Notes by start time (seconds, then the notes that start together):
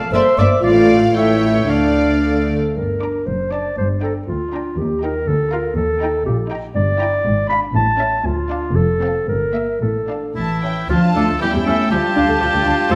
Already playing: A4 F5 A5
0.12 G1 G2 A#3 C5 D5 E5 C6
0.37 G1 G2 A#3 D5 E5 D6
0.61 A1 A2 A3 F4 D5 F5
0.65 D5
1.14 A1 A2 A3 E4 C#5 E5 G5
1.67 D2 D3 A3 D4 D5 F5
2.23 A4
2.76 G1 G2 A#4
3.02 D4 A#5 D6
3.26 F#1 F#2 C5
3.51 D4 D5 A5 D6
3.77 G1 G2 C5
4.02 D4 A4 G5 A#5
4.28 D2 F4
4.52 D4 G5 A#5
4.77 D#2 G4
5.02 D#4 A#4 G5 A#5
5.26 D2 A4
5.52 F4 A#4 F5 A#5
5.76 D#2 A4
6.02 D#4 G5 A#5
6.25 A#1 A#2 G4
6.50 D#4 G5 A#5
6.75 G1 G2 D5
6.99 E4 G5 A#5
7.24 G#1 G#2
7.49 D4 F5 B5
7.73 A1 A2 A5
7.99 C#4 E5 A5
8.23 D2 F4
8.50 D4 F5 A5
8.74 F1 F2 A4
9.00 C4 F5 A5
9.27 G1 G2 A#4
9.53 A#3 E5
9.81 A1 A2 A4
10.09 D4 F5 A5
10.35 A1 A2 E3 E4 A5
10.63 C#4 E5 G5
10.89 D2 F3 D4 F4 A5
11.15 D2 A3 D4 A4 F5
11.28 D2 A3
11.40 E2 E3 G3 C#4 E4 G4 G5
11.53 E2 G3
11.66 E2 A3 C#4 A4 E5
11.90 D2 F3 G3 D4 F4 G4 A5
12.16 D2 D4 F5
12.28 D2 A3
12.40 D2 F3 G3 G4
12.53 D2 A3
12.65 D2 D4 F5
12.90 F2 F3 A3 C4 A4